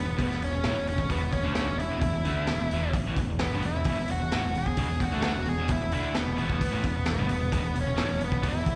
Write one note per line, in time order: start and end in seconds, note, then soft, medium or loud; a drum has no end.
0.00 0.22 B3 medium
0.05 0.18 E1 medium
0.05 0.16 E2 medium
0.05 0.17 B2 medium
0.17 0.29 E1 medium
0.17 0.29 E2 medium
0.17 0.29 B2 loud
0.17 kick loud
0.17 open hi-hat medium
0.23 0.44 B3 medium
0.30 0.42 E1 medium
0.30 0.41 E2 medium
0.30 0.41 B2 medium
0.30 snare soft
0.42 0.53 E1 medium
0.42 0.54 E2 medium
0.42 0.53 B2 medium
0.42 0.88 C#4 medium
0.42 open hi-hat medium
0.54 0.64 E1 medium
0.54 0.65 E2 medium
0.54 0.63 B2 medium
0.64 0.75 A1 medium
0.64 0.75 A2 loud
0.64 0.76 E3 loud
0.64 snare loud
0.64 open hi-hat medium
0.75 0.86 E1 medium
0.75 0.86 E2 medium
0.75 0.87 B2 medium
0.87 0.97 E1 medium
0.87 0.98 E2 medium
0.87 0.99 B2 medium
0.87 1.11 C#4 medium
0.87 open hi-hat medium
0.98 1.09 E1 medium
0.98 1.09 E2 medium
0.98 1.10 B2 medium
0.98 kick medium
1.10 1.21 E1 loud
1.10 1.21 E2 medium
1.10 1.21 B2 loud
1.10 1.32 B3 medium
1.10 kick medium
1.10 open hi-hat medium
1.22 1.32 E1 medium
1.22 1.31 E2 medium
1.22 1.32 B2 medium
1.32 1.44 E1 medium
1.32 1.45 E2 medium
1.32 1.44 B2 medium
1.32 1.53 C#4 medium
1.32 kick medium
1.32 open hi-hat soft
1.44 1.66 D2 medium
1.44 1.67 D3 medium
1.44 1.67 A3 loud
1.44 1.68 D4 loud
1.54 1.79 C#4 medium
1.54 snare loud
1.54 open hi-hat medium
1.68 1.79 E1 medium
1.68 1.79 E2 medium
1.68 1.79 B2 medium
1.78 1.90 E1 medium
1.78 1.89 E2 medium
1.78 1.91 B2 medium
1.78 2.00 E4 medium
1.78 open hi-hat medium
1.91 2.01 E1 medium
1.91 2.01 E2 medium
1.91 2.02 B2 loud
2.01 2.13 E1 medium
2.01 2.13 E2 medium
2.01 2.13 B2 medium
2.01 2.89 E4 medium
2.01 kick loud
2.01 open hi-hat medium
2.13 2.24 E1 medium
2.13 2.25 E2 medium
2.13 2.25 B2 medium
2.25 2.47 D2 medium
2.25 2.47 D3 medium
2.25 2.48 A3 medium
2.25 2.49 D4 loud
2.25 open hi-hat medium
2.47 2.59 E1 medium
2.47 2.60 E2 medium
2.47 2.60 B2 medium
2.47 snare loud
2.47 open hi-hat medium
2.59 2.70 E1 medium
2.59 2.71 E2 medium
2.59 2.72 B2 medium
2.71 2.93 E1 medium
2.71 2.94 E2 medium
2.71 2.95 B2 medium
2.71 2.95 E3 loud
2.71 open hi-hat medium
2.93 muted overdriven electric guitar stroke medium
2.93 kick loud
2.93 open hi-hat medium
3.06 3.16 A1 medium
3.06 3.17 A2 medium
3.06 3.18 E3 medium
3.16 3.27 E1 medium
3.16 3.29 E2 medium
3.16 3.29 B2 medium
3.16 kick medium
3.16 open hi-hat medium
3.28 3.39 E1 medium
3.28 3.41 E2 medium
3.28 3.41 B2 medium
3.39 3.51 E1 medium
3.39 3.53 E2 medium
3.39 3.53 B2 medium
3.39 3.64 B3 medium
3.39 snare loud
3.39 open hi-hat medium
3.51 3.62 G1 medium
3.51 3.63 G2 medium
3.51 3.64 D3 loud
3.62 3.74 E1 medium
3.62 3.75 E2 medium
3.62 3.76 B2 medium
3.62 4.11 E4 medium
3.62 open hi-hat medium
3.74 3.84 E1 medium
3.74 3.86 E2 medium
3.74 3.87 B2 medium
3.84 3.96 E1 medium
3.84 3.97 E2 medium
3.84 kick loud
3.84 open hi-hat medium
3.88 3.98 B2 loud
3.98 4.08 E1 medium
3.98 4.09 E2 medium
3.98 4.09 B2 medium
4.08 4.20 E1 medium
4.08 4.19 E2 medium
4.08 4.19 B2 medium
4.08 4.57 F#4 loud
4.08 open hi-hat medium
4.20 4.32 E1 medium
4.20 4.32 E2 medium
4.20 4.32 B2 medium
4.32 4.43 A1 medium
4.32 4.43 A2 medium
4.32 4.43 E3 loud
4.32 snare loud
4.32 open hi-hat medium
4.43 4.55 E1 medium
4.43 4.52 E2 medium
4.43 4.53 B2 medium
4.54 4.65 E1 medium
4.54 4.66 E2 medium
4.54 4.66 B2 medium
4.54 open hi-hat medium
4.58 5.03 G#4 loud
4.66 4.77 E1 medium
4.66 4.76 E2 medium
4.66 4.76 B2 medium
4.66 kick medium
4.77 4.88 E1 medium
4.77 4.88 E2 medium
4.77 4.88 B2 loud
4.77 kick medium
4.77 open hi-hat medium
4.89 4.99 E1 medium
4.89 5.00 E2 medium
4.89 5.00 B2 medium
5.00 5.11 E1 medium
5.00 5.12 E2 medium
5.00 5.11 B2 medium
5.00 5.23 F#4 loud
5.00 kick medium
5.00 open hi-hat medium
5.11 5.33 D2 medium
5.11 5.34 D3 medium
5.11 5.35 A3 medium
5.11 5.35 D4 loud
5.22 5.48 F#4 medium
5.22 snare loud
5.22 open hi-hat medium
5.35 5.46 E1 medium
5.35 5.45 E2 medium
5.35 5.45 B2 medium
5.45 5.57 E1 medium
5.45 5.57 E2 medium
5.45 5.58 B2 medium
5.45 5.71 G#4 loud
5.45 open hi-hat medium
5.57 5.68 E1 medium
5.57 5.69 E2 medium
5.57 5.69 B2 medium
5.68 5.80 E1 medium
5.68 5.80 E2 medium
5.68 5.81 B2 medium
5.68 5.93 E4 loud
5.68 kick loud
5.68 open hi-hat medium
5.81 5.92 E1 medium
5.81 5.92 E2 medium
5.81 5.92 B2 medium
5.91 6.14 D2 medium
5.91 6.15 D3 medium
5.91 6.15 A3 medium
5.91 6.15 D4 medium
5.91 6.17 E4 medium
5.91 open hi-hat medium
6.15 6.26 E1 medium
6.15 6.25 E2 medium
6.15 6.25 B2 medium
6.15 snare loud
6.15 open hi-hat medium
6.19 7.09 B3 medium
6.26 6.38 E1 medium
6.26 6.35 E2 medium
6.26 6.36 B2 medium
6.36 6.60 E1 medium
6.36 6.59 E2 medium
6.36 6.60 B2 medium
6.36 6.61 E3 medium
6.36 open hi-hat medium
6.50 kick medium
6.60 muted overdriven electric guitar stroke medium
6.60 muted picked electric bass stroke soft
6.60 kick medium
6.60 open hi-hat medium
6.72 6.83 A1 medium
6.72 6.83 A2 medium
6.72 6.84 E3 medium
6.84 6.95 E1 medium
6.84 6.95 E2 medium
6.84 6.95 B2 medium
6.84 kick medium
6.84 open hi-hat medium
6.95 7.06 E1 medium
6.95 7.06 E2 medium
6.95 7.05 B2 medium
7.06 7.17 E1 medium
7.06 7.18 E2 medium
7.06 7.18 B2 medium
7.06 snare loud
7.06 open hi-hat medium
7.10 7.53 B3 medium
7.18 7.29 G1 medium
7.18 7.29 G2 medium
7.18 7.29 D3 loud
7.29 7.40 E1 medium
7.29 7.40 E2 medium
7.29 7.39 B2 medium
7.29 open hi-hat medium
7.40 7.51 E1 medium
7.40 7.51 E2 medium
7.40 7.52 B2 medium
7.52 7.63 E1 medium
7.52 7.62 E2 loud
7.52 7.62 B2 loud
7.52 7.77 B3 loud
7.52 kick loud
7.52 open hi-hat medium
7.63 7.74 E1 medium
7.63 7.73 E2 medium
7.63 7.74 B2 medium
7.74 7.85 E1 medium
7.74 7.85 E2 medium
7.74 7.86 B2 medium
7.74 open hi-hat medium
7.81 8.24 C#4 medium
7.86 7.97 E1 medium
7.86 7.98 E2 medium
7.86 7.96 B2 medium
7.96 8.08 A1 medium
7.96 8.08 A2 loud
7.96 8.09 E3 loud
7.96 snare loud
7.96 open hi-hat medium
8.08 8.20 E1 medium
8.08 8.18 E2 medium
8.08 8.18 B2 medium
8.20 8.31 E1 medium
8.20 8.30 E2 medium
8.20 8.31 B2 medium
8.20 open hi-hat medium
8.24 8.46 B3 medium
8.31 8.43 E1 medium
8.31 8.41 E2 medium
8.31 8.42 B2 medium
8.31 kick medium
8.42 8.54 E1 loud
8.42 8.52 E2 medium
8.42 8.53 B2 loud
8.42 kick medium
8.42 open hi-hat medium
8.48 8.75 E4 medium
8.53 8.65 E1 medium
8.53 8.62 E2 medium
8.53 8.63 B2 medium
8.64 8.75 E1 medium
8.64 8.75 E2 medium
8.64 8.75 B2 medium
8.64 kick medium
8.64 open hi-hat medium